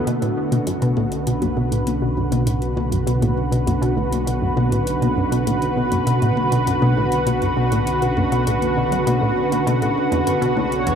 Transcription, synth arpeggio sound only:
0, 0, Header, 1, 2, 480
1, 0, Start_track
1, 0, Key_signature, 2, "minor"
1, 0, Tempo, 600000
1, 56, Time_signature, 4, 2, 24, 8
1, 8761, End_track
2, 0, Start_track
2, 0, Title_t, "Synth arpeggio sound"
2, 0, Program_c, 0, 84
2, 56, Note_on_c, 0, 47, 97
2, 164, Note_off_c, 0, 47, 0
2, 176, Note_on_c, 0, 45, 74
2, 248, Note_off_c, 0, 45, 0
2, 415, Note_on_c, 0, 47, 74
2, 459, Note_off_c, 0, 47, 0
2, 535, Note_on_c, 0, 42, 83
2, 579, Note_off_c, 0, 42, 0
2, 655, Note_on_c, 0, 47, 100
2, 764, Note_off_c, 0, 47, 0
2, 776, Note_on_c, 0, 45, 75
2, 848, Note_off_c, 0, 45, 0
2, 1016, Note_on_c, 0, 47, 81
2, 1059, Note_off_c, 0, 47, 0
2, 1134, Note_on_c, 0, 42, 78
2, 1178, Note_off_c, 0, 42, 0
2, 1254, Note_on_c, 0, 47, 96
2, 1364, Note_off_c, 0, 47, 0
2, 1374, Note_on_c, 0, 45, 74
2, 1447, Note_off_c, 0, 45, 0
2, 1615, Note_on_c, 0, 47, 72
2, 1659, Note_off_c, 0, 47, 0
2, 1736, Note_on_c, 0, 42, 75
2, 1779, Note_off_c, 0, 42, 0
2, 1855, Note_on_c, 0, 47, 91
2, 1964, Note_off_c, 0, 47, 0
2, 1974, Note_on_c, 0, 45, 79
2, 2047, Note_off_c, 0, 45, 0
2, 2214, Note_on_c, 0, 47, 74
2, 2258, Note_off_c, 0, 47, 0
2, 2334, Note_on_c, 0, 42, 73
2, 2379, Note_off_c, 0, 42, 0
2, 2454, Note_on_c, 0, 47, 100
2, 2564, Note_off_c, 0, 47, 0
2, 2574, Note_on_c, 0, 45, 73
2, 2647, Note_off_c, 0, 45, 0
2, 2814, Note_on_c, 0, 47, 75
2, 2858, Note_off_c, 0, 47, 0
2, 2934, Note_on_c, 0, 42, 83
2, 2979, Note_off_c, 0, 42, 0
2, 3054, Note_on_c, 0, 47, 100
2, 3164, Note_off_c, 0, 47, 0
2, 3175, Note_on_c, 0, 45, 77
2, 3248, Note_off_c, 0, 45, 0
2, 3415, Note_on_c, 0, 47, 84
2, 3459, Note_off_c, 0, 47, 0
2, 3534, Note_on_c, 0, 42, 75
2, 3579, Note_off_c, 0, 42, 0
2, 3654, Note_on_c, 0, 47, 101
2, 3764, Note_off_c, 0, 47, 0
2, 3774, Note_on_c, 0, 45, 74
2, 3847, Note_off_c, 0, 45, 0
2, 4014, Note_on_c, 0, 47, 77
2, 4059, Note_off_c, 0, 47, 0
2, 4134, Note_on_c, 0, 42, 75
2, 4178, Note_off_c, 0, 42, 0
2, 4255, Note_on_c, 0, 47, 101
2, 4364, Note_off_c, 0, 47, 0
2, 4374, Note_on_c, 0, 45, 81
2, 4447, Note_off_c, 0, 45, 0
2, 4614, Note_on_c, 0, 47, 74
2, 4658, Note_off_c, 0, 47, 0
2, 4733, Note_on_c, 0, 42, 76
2, 4778, Note_off_c, 0, 42, 0
2, 4854, Note_on_c, 0, 47, 104
2, 4963, Note_off_c, 0, 47, 0
2, 4976, Note_on_c, 0, 45, 78
2, 5048, Note_off_c, 0, 45, 0
2, 5215, Note_on_c, 0, 47, 74
2, 5259, Note_off_c, 0, 47, 0
2, 5337, Note_on_c, 0, 42, 83
2, 5380, Note_off_c, 0, 42, 0
2, 5456, Note_on_c, 0, 47, 97
2, 5565, Note_off_c, 0, 47, 0
2, 5575, Note_on_c, 0, 45, 76
2, 5648, Note_off_c, 0, 45, 0
2, 5815, Note_on_c, 0, 47, 82
2, 5859, Note_off_c, 0, 47, 0
2, 5936, Note_on_c, 0, 42, 75
2, 5980, Note_off_c, 0, 42, 0
2, 6055, Note_on_c, 0, 47, 100
2, 6164, Note_off_c, 0, 47, 0
2, 6176, Note_on_c, 0, 45, 76
2, 6248, Note_off_c, 0, 45, 0
2, 6416, Note_on_c, 0, 47, 73
2, 6460, Note_off_c, 0, 47, 0
2, 6536, Note_on_c, 0, 42, 73
2, 6580, Note_off_c, 0, 42, 0
2, 6656, Note_on_c, 0, 47, 100
2, 6764, Note_off_c, 0, 47, 0
2, 6775, Note_on_c, 0, 45, 84
2, 6848, Note_off_c, 0, 45, 0
2, 7015, Note_on_c, 0, 47, 75
2, 7059, Note_off_c, 0, 47, 0
2, 7134, Note_on_c, 0, 42, 75
2, 7179, Note_off_c, 0, 42, 0
2, 7253, Note_on_c, 0, 47, 107
2, 7363, Note_off_c, 0, 47, 0
2, 7372, Note_on_c, 0, 45, 73
2, 7447, Note_off_c, 0, 45, 0
2, 7614, Note_on_c, 0, 47, 75
2, 7659, Note_off_c, 0, 47, 0
2, 7735, Note_on_c, 0, 47, 96
2, 7844, Note_off_c, 0, 47, 0
2, 7855, Note_on_c, 0, 45, 76
2, 7928, Note_off_c, 0, 45, 0
2, 8094, Note_on_c, 0, 40, 96
2, 8167, Note_off_c, 0, 40, 0
2, 8214, Note_on_c, 0, 42, 82
2, 8258, Note_off_c, 0, 42, 0
2, 8334, Note_on_c, 0, 47, 96
2, 8443, Note_off_c, 0, 47, 0
2, 8453, Note_on_c, 0, 45, 80
2, 8527, Note_off_c, 0, 45, 0
2, 8694, Note_on_c, 0, 40, 102
2, 8761, Note_off_c, 0, 40, 0
2, 8761, End_track
0, 0, End_of_file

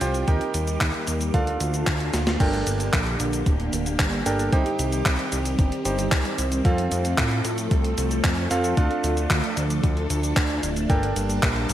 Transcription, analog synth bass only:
0, 0, Header, 1, 2, 480
1, 0, Start_track
1, 0, Key_signature, -2, "minor"
1, 0, Tempo, 530973
1, 250, Time_signature, 4, 2, 24, 8
1, 10606, End_track
2, 0, Start_track
2, 0, Title_t, "Analog synth bass"
2, 0, Program_c, 0, 38
2, 11, Note_on_c, 0, 36, 82
2, 223, Note_off_c, 0, 36, 0
2, 251, Note_on_c, 0, 39, 89
2, 357, Note_off_c, 0, 39, 0
2, 491, Note_on_c, 0, 39, 89
2, 704, Note_off_c, 0, 39, 0
2, 731, Note_on_c, 0, 39, 90
2, 837, Note_off_c, 0, 39, 0
2, 972, Note_on_c, 0, 39, 78
2, 1184, Note_off_c, 0, 39, 0
2, 1211, Note_on_c, 0, 38, 82
2, 1424, Note_off_c, 0, 38, 0
2, 1451, Note_on_c, 0, 38, 96
2, 1664, Note_off_c, 0, 38, 0
2, 1691, Note_on_c, 0, 38, 84
2, 1904, Note_off_c, 0, 38, 0
2, 1932, Note_on_c, 0, 38, 86
2, 2144, Note_off_c, 0, 38, 0
2, 2171, Note_on_c, 0, 31, 95
2, 2384, Note_off_c, 0, 31, 0
2, 2412, Note_on_c, 0, 31, 101
2, 2624, Note_off_c, 0, 31, 0
2, 2651, Note_on_c, 0, 34, 101
2, 2863, Note_off_c, 0, 34, 0
2, 2891, Note_on_c, 0, 34, 85
2, 3104, Note_off_c, 0, 34, 0
2, 3131, Note_on_c, 0, 26, 107
2, 3344, Note_off_c, 0, 26, 0
2, 3372, Note_on_c, 0, 26, 94
2, 3584, Note_off_c, 0, 26, 0
2, 3611, Note_on_c, 0, 31, 83
2, 3823, Note_off_c, 0, 31, 0
2, 3851, Note_on_c, 0, 31, 81
2, 4064, Note_off_c, 0, 31, 0
2, 4091, Note_on_c, 0, 36, 92
2, 4197, Note_off_c, 0, 36, 0
2, 4332, Note_on_c, 0, 36, 91
2, 4544, Note_off_c, 0, 36, 0
2, 4571, Note_on_c, 0, 36, 89
2, 4677, Note_off_c, 0, 36, 0
2, 4811, Note_on_c, 0, 36, 78
2, 5024, Note_off_c, 0, 36, 0
2, 5051, Note_on_c, 0, 31, 100
2, 5157, Note_off_c, 0, 31, 0
2, 5291, Note_on_c, 0, 31, 91
2, 5504, Note_off_c, 0, 31, 0
2, 5531, Note_on_c, 0, 36, 94
2, 5637, Note_off_c, 0, 36, 0
2, 5771, Note_on_c, 0, 36, 92
2, 5983, Note_off_c, 0, 36, 0
2, 6011, Note_on_c, 0, 41, 99
2, 6224, Note_off_c, 0, 41, 0
2, 6251, Note_on_c, 0, 41, 99
2, 6464, Note_off_c, 0, 41, 0
2, 6491, Note_on_c, 0, 45, 108
2, 6704, Note_off_c, 0, 45, 0
2, 6732, Note_on_c, 0, 45, 83
2, 6944, Note_off_c, 0, 45, 0
2, 6971, Note_on_c, 0, 36, 99
2, 7184, Note_off_c, 0, 36, 0
2, 7212, Note_on_c, 0, 36, 91
2, 7424, Note_off_c, 0, 36, 0
2, 7451, Note_on_c, 0, 41, 88
2, 7664, Note_off_c, 0, 41, 0
2, 7691, Note_on_c, 0, 41, 90
2, 7904, Note_off_c, 0, 41, 0
2, 7931, Note_on_c, 0, 38, 92
2, 8037, Note_off_c, 0, 38, 0
2, 8171, Note_on_c, 0, 38, 88
2, 8384, Note_off_c, 0, 38, 0
2, 8411, Note_on_c, 0, 38, 91
2, 8517, Note_off_c, 0, 38, 0
2, 8651, Note_on_c, 0, 38, 79
2, 8864, Note_off_c, 0, 38, 0
2, 8891, Note_on_c, 0, 38, 92
2, 9104, Note_off_c, 0, 38, 0
2, 9131, Note_on_c, 0, 38, 99
2, 9344, Note_off_c, 0, 38, 0
2, 9371, Note_on_c, 0, 38, 100
2, 9583, Note_off_c, 0, 38, 0
2, 9611, Note_on_c, 0, 26, 93
2, 9824, Note_off_c, 0, 26, 0
2, 9851, Note_on_c, 0, 31, 93
2, 10063, Note_off_c, 0, 31, 0
2, 10092, Note_on_c, 0, 31, 98
2, 10304, Note_off_c, 0, 31, 0
2, 10331, Note_on_c, 0, 34, 108
2, 10543, Note_off_c, 0, 34, 0
2, 10571, Note_on_c, 0, 34, 87
2, 10606, Note_off_c, 0, 34, 0
2, 10606, End_track
0, 0, End_of_file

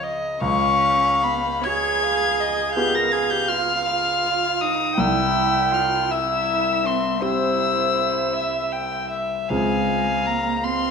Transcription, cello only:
0, 0, Header, 1, 2, 480
1, 0, Start_track
1, 0, Tempo, 745342
1, 269, Time_signature, 12, 3, 24, 8
1, 269, Tempo, 810811
1, 1229, Tempo, 722892
1, 2189, Tempo, 744417
1, 3629, Tempo, 756620
1, 6920, End_track
2, 0, Start_track
2, 0, Title_t, "Cello"
2, 0, Program_c, 0, 42
2, 272, Note_on_c, 0, 61, 75
2, 754, Note_on_c, 0, 59, 65
2, 763, Note_off_c, 0, 61, 0
2, 1008, Note_on_c, 0, 68, 75
2, 1016, Note_off_c, 0, 59, 0
2, 1721, Note_on_c, 0, 67, 73
2, 1731, Note_off_c, 0, 68, 0
2, 1835, Note_on_c, 0, 70, 66
2, 1845, Note_off_c, 0, 67, 0
2, 1950, Note_on_c, 0, 68, 66
2, 1960, Note_off_c, 0, 70, 0
2, 2069, Note_on_c, 0, 67, 62
2, 2079, Note_off_c, 0, 68, 0
2, 2192, Note_on_c, 0, 65, 67
2, 2201, Note_off_c, 0, 67, 0
2, 2426, Note_off_c, 0, 65, 0
2, 2429, Note_on_c, 0, 65, 70
2, 2918, Note_on_c, 0, 63, 64
2, 2928, Note_off_c, 0, 65, 0
2, 3152, Note_on_c, 0, 64, 77
2, 3162, Note_off_c, 0, 63, 0
2, 3629, Note_on_c, 0, 65, 72
2, 3639, Note_off_c, 0, 64, 0
2, 3870, Note_on_c, 0, 64, 67
2, 3879, Note_off_c, 0, 65, 0
2, 4347, Note_on_c, 0, 60, 65
2, 4357, Note_off_c, 0, 64, 0
2, 4583, Note_on_c, 0, 64, 66
2, 4592, Note_off_c, 0, 60, 0
2, 5787, Note_off_c, 0, 64, 0
2, 6033, Note_on_c, 0, 56, 69
2, 6513, Note_on_c, 0, 58, 64
2, 6523, Note_off_c, 0, 56, 0
2, 6751, Note_on_c, 0, 60, 67
2, 6761, Note_off_c, 0, 58, 0
2, 6920, Note_off_c, 0, 60, 0
2, 6920, End_track
0, 0, End_of_file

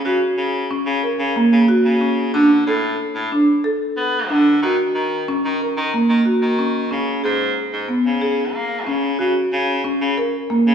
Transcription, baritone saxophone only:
0, 0, Header, 1, 2, 480
1, 0, Start_track
1, 0, Key_signature, 6, "major"
1, 0, Tempo, 652884
1, 37, Time_signature, 7, 3, 24, 8
1, 7900, End_track
2, 0, Start_track
2, 0, Title_t, "Baritone saxophone"
2, 0, Program_c, 0, 67
2, 29, Note_on_c, 0, 49, 82
2, 144, Note_off_c, 0, 49, 0
2, 276, Note_on_c, 0, 49, 81
2, 499, Note_off_c, 0, 49, 0
2, 633, Note_on_c, 0, 49, 98
2, 747, Note_off_c, 0, 49, 0
2, 876, Note_on_c, 0, 49, 98
2, 988, Note_off_c, 0, 49, 0
2, 1121, Note_on_c, 0, 49, 88
2, 1231, Note_off_c, 0, 49, 0
2, 1357, Note_on_c, 0, 49, 80
2, 1691, Note_off_c, 0, 49, 0
2, 1719, Note_on_c, 0, 50, 83
2, 1941, Note_off_c, 0, 50, 0
2, 1960, Note_on_c, 0, 45, 95
2, 2182, Note_off_c, 0, 45, 0
2, 2315, Note_on_c, 0, 45, 87
2, 2428, Note_off_c, 0, 45, 0
2, 2919, Note_on_c, 0, 59, 87
2, 3162, Note_on_c, 0, 50, 86
2, 3173, Note_off_c, 0, 59, 0
2, 3383, Note_off_c, 0, 50, 0
2, 3398, Note_on_c, 0, 51, 92
2, 3510, Note_off_c, 0, 51, 0
2, 3638, Note_on_c, 0, 51, 76
2, 3862, Note_off_c, 0, 51, 0
2, 4005, Note_on_c, 0, 51, 87
2, 4114, Note_off_c, 0, 51, 0
2, 4243, Note_on_c, 0, 51, 102
2, 4353, Note_off_c, 0, 51, 0
2, 4478, Note_on_c, 0, 51, 82
2, 4591, Note_off_c, 0, 51, 0
2, 4721, Note_on_c, 0, 51, 83
2, 5054, Note_off_c, 0, 51, 0
2, 5085, Note_on_c, 0, 49, 90
2, 5305, Note_off_c, 0, 49, 0
2, 5326, Note_on_c, 0, 44, 87
2, 5546, Note_off_c, 0, 44, 0
2, 5681, Note_on_c, 0, 44, 79
2, 5792, Note_off_c, 0, 44, 0
2, 5923, Note_on_c, 0, 49, 87
2, 6277, Note_on_c, 0, 58, 86
2, 6288, Note_off_c, 0, 49, 0
2, 6518, Note_on_c, 0, 49, 83
2, 6529, Note_off_c, 0, 58, 0
2, 6742, Note_off_c, 0, 49, 0
2, 6763, Note_on_c, 0, 49, 82
2, 6873, Note_off_c, 0, 49, 0
2, 7004, Note_on_c, 0, 49, 91
2, 7225, Note_off_c, 0, 49, 0
2, 7362, Note_on_c, 0, 49, 94
2, 7472, Note_off_c, 0, 49, 0
2, 7846, Note_on_c, 0, 49, 90
2, 7900, Note_off_c, 0, 49, 0
2, 7900, End_track
0, 0, End_of_file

